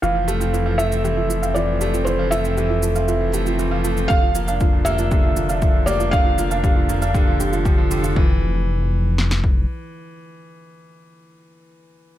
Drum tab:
SH |x-xxx-xxx-xxx-xx|x-xxx-xxx-xxx-xx|x-xxx-xxx-xxx-xx|x-xxx-xxx-xxx-xx|
SD |----------------|----------------|----------------|----------------|
BD |----------------|----------------|o---o---o---o---|o---o---o---o---|

SH |----------------|----------------|
SD |--------oo------|----------------|
BD |o---------o-----|----------------|